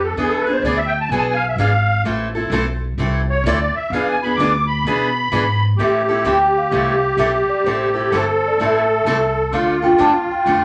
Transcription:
Already playing: upright bass F2
0.04 accordion A4
0.16 upright bass E2, steel-string acoustic guitar E3 B3 D4 G#4, accordion G#4
0.28 accordion A4
0.41 accordion B4
0.47 steel-string acoustic guitar B3 D4 G#4
0.53 accordion C5
0.62 upright bass D2, steel-string acoustic guitar E3 B3 D4 G#4, accordion D5
0.76 accordion E5
0.87 accordion G5
1.00 accordion A5
1.09 upright bass B1, steel-string acoustic guitar E3 B3 D4 G#4, accordion G#5
1.19 accordion A5
1.30 accordion G#5
1.34 accordion F5
1.48 accordion E5
1.56 upright bass G#1, steel-string acoustic guitar E3 B3 D4 G#4, accordion F5
2.04 upright bass A1, steel-string acoustic guitar E3 A3 C4 E4 A4
2.35 steel-string acoustic guitar C4 E4 A4
2.50 upright bass B1, steel-string acoustic guitar E3 A3 C4 E4 A4
2.98 upright bass C2, steel-string acoustic guitar E3 A3 C4 E4 A4
3.30 accordion C#5
3.44 upright bass D2, steel-string acoustic guitar E3 A3 C4 E4 A4, accordion D5
3.74 accordion E5, muted upright bass stroke
3.90 upright bass E2, steel-string acoustic guitar E3 B3 D4, accordion F5
3.94 steel-string acoustic guitar G#4
4.09 accordion G#5
4.23 steel-string acoustic guitar B3 D4 G#4, accordion B5
4.36 upright bass D2, steel-string acoustic guitar E3, accordion D6
4.40 steel-string acoustic guitar B3 D4 G#4
4.67 accordion B5
4.84 upright bass B2, steel-string acoustic guitar E3 B3 D4 G#4
5.32 upright bass G#2, steel-string acoustic guitar E3 B3 D4 G#4
5.77 upright bass A2, steel-string acoustic guitar E3 A3 C4 E4 A4, accordion G4
5.83 vibraphone E5
6.09 steel-string acoustic guitar C4 E4 A4
6.24 upright bass D2, steel-string acoustic guitar E3 A3 C4 E4 A4, vibraphone G5
6.58 vibraphone F5
6.71 upright bass C2, steel-string acoustic guitar E3 A3 C4 E4 A4
7.17 upright bass B1, steel-string acoustic guitar E3 A3 C4 E4 A4, vibraphone E5
7.48 vibraphone D5, muted upright bass stroke
7.64 upright bass A1, steel-string acoustic guitar E3 A3 C4 E4 A4, vibraphone C5
7.94 steel-string acoustic guitar C4 E4 A4
8.10 upright bass G1, steel-string acoustic guitar E3 A3 C4 E4 A4, accordion A4
8.17 vibraphone C5
8.48 vibraphone D5
8.58 upright bass A1, steel-string acoustic guitar E3 A3 C4 E4 A4
8.65 vibraphone E5
9.05 upright bass C2, steel-string acoustic guitar E3 A3 C4 E4 A4
9.52 upright bass D2, steel-string acoustic guitar D3 A3 D4 F4 A4, accordion F4, vibraphone F5
9.82 steel-string acoustic guitar D4 F4 A4, vibraphone G5
9.98 upright bass E2, steel-string acoustic guitar D3 A3 D4 F4 A4, vibraphone A5
10.29 vibraphone G5, muted upright bass stroke
10.46 upright bass F2, steel-string acoustic guitar D3 A3 D4 F4 A4

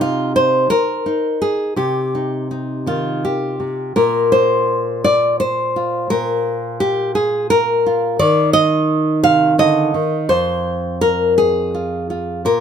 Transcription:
Already playing: nylon-string guitar C3 D#4
0.01 nylon-string guitar F4
0.36 nylon-string guitar C5
0.70 nylon-string guitar A#4, muted nylon-string guitar stroke
1.06 nylon-string guitar D#4
1.42 nylon-string guitar G#4
1.76 nylon-string guitar C3 G4
2.15 nylon-string guitar D#4
2.51 nylon-string guitar D#4
2.86 nylon-string guitar D#3 F4
3.25 nylon-string guitar G4
3.60 nylon-string guitar C3
3.96 nylon-string guitar A#2 A#4
4.32 nylon-string guitar C5
5.04 nylon-string guitar D5
5.40 nylon-string guitar C5
5.76 nylon-string guitar F4
6.10 nylon-string guitar A#2 A#4
6.80 nylon-string guitar G4
7.15 nylon-string guitar G#4
7.50 nylon-string guitar A#4
7.86 nylon-string guitar F4
8.19 nylon-string guitar D#3 D5
8.53 nylon-string guitar D#5
9.23 nylon-string guitar C3 F5
9.58 nylon-string guitar D3 D#5
9.94 nylon-string guitar D#3
10.29 nylon-string guitar F2 C5
11.01 nylon-string guitar A#4
11.38 nylon-string guitar G#4
11.74 nylon-string guitar F4
12.10 nylon-string guitar F4
12.45 nylon-string guitar A#2 A#4

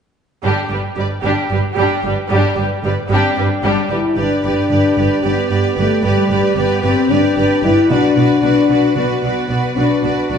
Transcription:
0.43 double bass section G1, cello section G2, viola section G3 G4, violin section D4 G4
0.70 double bass section G1, cello section G2, viola section G3 G4, violin section G4 B4
0.96 double bass section G1, cello section G2, viola section G3 G4, violin section B4 D5
1.23 double bass section G1, cello section G2, viola section G3 G4, violin section D4 G4
1.50 double bass section G1, cello section G2, viola section G3 G4, violin section G4 B4
1.76 double bass section G1, cello section G2, viola section G3 G4, violin section D4 G4
2.03 double bass section G1, cello section G2, viola section G3 G4
2.08 violin section G4 B4
2.30 double bass section G1, cello section G2, viola section G3 G4
2.34 violin section D4 G4
2.56 double bass section G1, cello section G2, viola section G3 G4, violin section G4
2.61 violin section B4
2.83 double bass section G1, cello section G2, viola section G3 G4, violin section B4 D5
3.09 double bass section G1, cello section G2, viola section G3 G4, french horn section C4, violin section D4 G4
3.36 double bass section G1, cello section G2, viola section G3 G4, french horn section D4, violin section G4 B4
3.63 double bass section G1, cello section G2, viola section G3 G4, violin section D4 G4
3.90 double bass section G1, cello section G2, viola section G3 G4, french horn section E4, violin section G4 B4
4.16 double bass section G1, cello section G2, french horn section D4, viola section G4, violin section B4 D5
4.42 double bass section G1, cello section G2, viola section G4, violin section B4 D5
4.69 double bass section G1, cello section G2, viola section G4, violin section B4 D5
4.96 double bass section G1, cello section G2, viola section G4, violin section B4 D5
5.23 double bass section G1, cello section G2, french horn section B3, viola section G4, violin section B4 D5
5.49 double bass section G1, cello section G2, viola section G4, violin section B4 D5
5.76 double bass section G1, cello section G2, french horn section A3, viola section G4, violin section B4 D5
6.01 double bass section G1, cello section G2, french horn section G3, violin section B4 D5
6.05 viola section G4
6.29 double bass section G1, cello section G2, viola section G4, violin section B4 D5
6.56 double bass section G1, cello section G2, french horn section B3, viola section G4, violin section B4 D5
6.82 double bass section G1, cello section G2, french horn section C4, viola section G4, violin section B4 D5
7.07 double bass section G1, cello section G2, french horn section D4, viola section G4, violin section B4 D5
7.36 double bass section G1, cello section G2, viola section G4, violin section B4 D5
7.62 double bass section G1, cello section G2, french horn section E4, viola section G4, violin section B4 D5
7.89 double bass section B1, cello section B2, french horn section D4, viola section F#4, violin section B4 D5
8.16 double bass section B1, cello section B2, viola section F#4, violin section B4 D5
8.42 double bass section B1, cello section B2, viola section F#4, violin section B4 D5
8.69 double bass section B1, cello section B2, viola section F#4, violin section B4 D5
8.96 double bass section B1, cello section B2, french horn section B3, viola section F#4, violin section B4 D5
9.22 double bass section B1, cello section B2, viola section F#4, violin section D5
9.27 violin section B4
9.48 double bass section B1, cello section B2, viola section F#4, violin section D5
9.52 violin section B4
9.75 double bass section B1, cello section B2, french horn section D4, viola section F#4, violin section D5
9.80 violin section B4
10.03 double bass section B1, cello section B2, viola section F#4, violin section B4 D5
10.29 double bass section B1, cello section B2, viola section F#4, violin section B4 D5

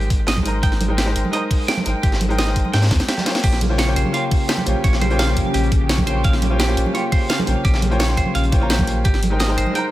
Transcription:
Already playing: grand piano G#3 D#4 A#4 C5 G5
0.01 closed hi-hat
0.10 sub bass G#1, kick, closed hi-hat
0.27 clean electric guitar D#5, snare, closed hi-hat
0.36 kick, high conga
0.43 grand piano G#3 D#4 A#4 C5, closed hi-hat
0.48 grand piano A#5
0.63 sub bass G#1, clean electric guitar G5, kick, closed hi-hat
0.72 snare
0.81 closed hi-hat, high conga
0.88 grand piano G#3 D#4 A#4 C5 G5
0.98 clean electric guitar G4, snare, closed hi-hat
1.06 grand piano G#3 D#4 A#4 C5 G5
1.16 sub bass G#1, closed hi-hat
1.25 high conga
1.31 grand piano G#3 D#4 A#4 C5, clean electric guitar D#5, closed hi-hat
1.36 grand piano A#5
1.51 kick, closed hi-hat, open hi-hat
1.68 clean electric guitar G5, snare, closed hi-hat
1.77 high conga
1.84 sub bass G#1, grand piano G#3 D#4 A#4 C5, closed hi-hat
1.89 grand piano G5
2.03 sub bass G#1, clean electric guitar G4, kick, closed hi-hat
2.12 snare
2.21 closed hi-hat, high conga
2.29 grand piano G#3 D#4 A#4 C5 G5, closed hi-hat
2.38 clean electric guitar D#5, snare, closed hi-hat
2.45 grand piano G#3 D#4 A#4 C5, snare
2.50 grand piano G5
2.56 sub bass G#1, kick, closed hi-hat
2.65 high conga
2.73 sub bass G#2, clean electric guitar G5, snare, closed hi-hat
2.82 snare, closed hi-hat
2.87 snare, closed hi-hat
2.91 sub bass D#2, kick, snare, closed hi-hat
3.00 snare
3.08 clean electric guitar G4, snare, closed hi-hat
3.17 snare, closed hi-hat, high conga
3.24 grand piano A#3 F4 C5 C#5, snare, closed hi-hat
3.29 grand piano G5
3.35 snare, closed hi-hat
3.44 sub bass A#1, analog synth pad C#3 G4, clean electric guitar G4, kick, closed hi-hat, crash
3.53 snare
3.61 closed hi-hat, high conga
3.69 grand piano A#3 F4 C5 C#5 G5
3.78 clean electric guitar C#5, snare, closed hi-hat
3.86 grand piano A#3 F4 C5 C#5 G5
3.96 sub bass A#1, clean electric guitar C5, closed hi-hat
4.05 high conga
4.12 grand piano A#3 C#4 F4 C6, clean electric guitar F5, closed hi-hat
4.16 grand piano G5
4.31 kick, closed hi-hat, open hi-hat
4.49 clean electric guitar G4, snare, closed hi-hat
4.57 high conga
4.64 sub bass A#1, grand piano A#3 F4 C5 C#5, closed hi-hat
4.69 grand piano G5
4.84 sub bass A#1, clean electric guitar C#5, kick, closed hi-hat
4.93 snare
5.01 clean electric guitar C5, closed hi-hat, high conga
5.09 grand piano A#3 F4 C5 C#5 G5, closed hi-hat
5.19 clean electric guitar F5, snare, closed hi-hat
5.26 grand piano A#3 C#4 F4 C5, snare
5.31 grand piano G5
5.37 sub bass A#1, kick, closed hi-hat
5.45 high conga
5.54 sub bass A#1, clean electric guitar G4, closed hi-hat
5.63 closed hi-hat
5.72 sub bass A#1, kick, closed hi-hat
5.89 clean electric guitar C#5, snare, closed hi-hat
5.98 kick, high conga
6.05 grand piano A#3 C#4 F4 C6, clean electric guitar C5, closed hi-hat
6.09 grand piano G5
6.24 sub bass A#1, clean electric guitar F5, kick, closed hi-hat
6.33 snare
6.42 closed hi-hat, high conga
6.50 grand piano A#3 F4 C5 C#5 G5
6.59 clean electric guitar G4, snare, closed hi-hat
6.67 grand piano A#3 F4 C5 C#5 G5
6.77 sub bass A#1, closed hi-hat
6.86 high conga
6.92 grand piano A#3 C#4 F4 C6, clean electric guitar C#5, closed hi-hat
6.97 grand piano G5
7.12 clean electric guitar C5, kick, closed hi-hat, open hi-hat
7.29 clean electric guitar F5, snare, closed hi-hat
7.39 high conga
7.45 sub bass A#1, grand piano A#3 C#4 F4 C5, closed hi-hat
7.50 grand piano G5
7.65 sub bass A#1, clean electric guitar G4, kick, closed hi-hat
7.74 snare
7.82 closed hi-hat, high conga
7.90 grand piano A#3 F4 C5 C#5 G5, closed hi-hat
8.00 clean electric guitar C#5, snare, closed hi-hat
8.06 grand piano A#3 C#4 F4 C6, snare
8.11 grand piano G5
8.17 sub bass A#1, clean electric guitar C5, kick, closed hi-hat
8.26 high conga
8.35 sub bass A#1, clean electric guitar F5, closed hi-hat
8.43 closed hi-hat
8.51 sub bass A#1, grand piano A#3 F4 C5 C#5 G5, kick, closed hi-hat
8.60 grand piano A#3 F4 C5 C#5 A#5
8.70 clean electric guitar G4, snare, closed hi-hat
8.78 grand piano A#3 F4 C5 C#5 G5, kick, high conga
8.87 closed hi-hat
9.05 sub bass G#1, clean electric guitar G4, kick, closed hi-hat
9.14 snare
9.23 closed hi-hat, high conga
9.30 grand piano G#3 D#4 A#4 C5 G5
9.40 clean electric guitar D#5, snare, closed hi-hat
9.48 grand piano G#3 D#4 A#4 C5 G5
9.58 sub bass G#1, clean electric guitar C5, closed hi-hat
9.67 high conga
9.73 grand piano G#3 D#4 A#4 C5, clean electric guitar G5, closed hi-hat
9.78 grand piano A#5

